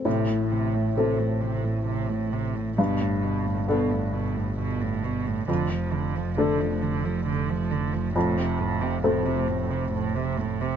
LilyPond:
<<
  \new Staff \with { instrumentName = "Upright piano" } { \time 3/4 \key a \minor \tempo 4 = 67 a,4 <a c' a'>2 | g,4 <b d' a'>2 | f,4 <a d' a'>2 | f,4 <a c' a'>2 | }
  \new Staff \with { instrumentName = "Cello" } { \clef bass \time 3/4 \key a \minor c16 a,16 c16 a,16 c16 a,16 c16 a,16 c16 a,16 c16 a,16 | b,16 a,16 b,16 a,16 b,16 a,16 b,16 a,16 b,16 a,16 b,16 a,16 | d16 f16 d16 f16 d16 f16 d16 f16 d16 f16 d16 f16 | a,16 c16 a,16 c16 a,16 c16 a,16 c16 a,16 c16 a,16 c16 | }
  \new Staff \with { instrumentName = "Double bass" } { \clef bass \time 3/4 \key a \minor a,,2. | g,,2. | f,,2.~ | f,,2. | }
>>